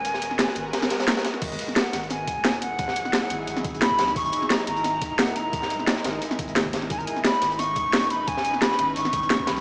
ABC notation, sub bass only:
X:1
M:4/4
L:1/8
Q:"Swing 16ths" 1/4=175
K:Elyd
V:1 name="Sub bass" clef=bass
D,,,2 z G,,, z4 | G,,, z2 G,,,2 D,,,3- | D,,,2 z G,,, G,,,2 D,,, C,, | G,,, z2 G,,,2 D,,,3- |
D,,,2 z G,,, z G,,,2 G,,, | G,,, z2 G,,,2 D,,,3- | D,,,2 z G,,, G,,,2 D,,, C,, |]